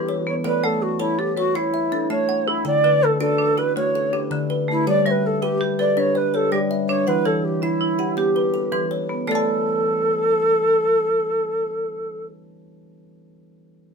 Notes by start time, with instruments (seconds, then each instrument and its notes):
Already playing: kalimba E3 A4, marimba E3 E4 B4, native american-style wooden flute G4
0.09 kalimba C#5
0.27 marimba B3, native american-style wooden flute C#5
0.44 kalimba A3 A4, native american-style wooden flute B4, marimba D5
0.64 marimba A3, native american-style wooden flute A4, kalimba F#5
0.82 native american-style wooden flute F#4
0.99 native american-style wooden flute E4, kalimba A4 C#5, marimba A5
1.18 native american-style wooden flute G4, marimba A4
1.37 native american-style wooden flute F#4, marimba B4, kalimba C#5
1.55 native american-style wooden flute E4, kalimba E4, marimba C#5
1.74 kalimba E5
1.92 kalimba D4, marimba A4
2.10 kalimba A3, marimba A3 E5, native american-style wooden flute C#5
2.29 kalimba F#5
2.48 marimba E4, native american-style wooden flute E4
2.65 kalimba D3, native american-style wooden flute D5, marimba G5
2.84 marimba D3, kalimba B4
3.03 native american-style wooden flute A4
3.20 kalimba D4 F#4, native american-style wooden flute A4, marimba D5
3.38 marimba D4
3.57 marimba E4, kalimba F#4, native american-style wooden flute B4
3.76 kalimba A3, marimba F#4, native american-style wooden flute C#5
3.95 kalimba A4
4.13 marimba D4, kalimba G4
4.31 kalimba D3, marimba D3
4.50 kalimba B4
4.68 marimba A3, native american-style wooden flute E4
4.87 kalimba G3 G4, marimba C#5, native american-style wooden flute D5
5.06 marimba G3, native american-style wooden flute C#5, kalimba E5
5.10 native american-style wooden flute B4
5.26 native american-style wooden flute A4
5.42 native american-style wooden flute G4, kalimba G4 B4, marimba G5
5.61 marimba G4
5.79 marimba A4, kalimba B4, native american-style wooden flute D5
5.97 kalimba D4, marimba B4, native american-style wooden flute C#5
6.15 native american-style wooden flute B4, kalimba D5
6.34 marimba G4, native american-style wooden flute A4, kalimba C#5
6.52 kalimba G3, marimba G3 D5, native american-style wooden flute G4
6.71 kalimba E5
6.88 marimba D4, native american-style wooden flute C#5
7.07 kalimba E3 E4, native american-style wooden flute B4, marimba F#5
7.25 marimba E3, native american-style wooden flute A4, kalimba C#5
7.44 native american-style wooden flute G4
7.62 native american-style wooden flute E4, kalimba E4, marimba E5
7.81 marimba E4
7.99 kalimba G4, marimba F#5
8.17 kalimba B3, native american-style wooden flute G4, marimba G4
8.36 kalimba B4
8.54 kalimba A4
8.72 marimba E3 B4, kalimba E3
8.91 kalimba C#5
9.09 marimba B3
9.27 kalimba A3 A4, marimba A3 D5, native american-style wooden flute A4
9.32 marimba A4 A5, kalimba A5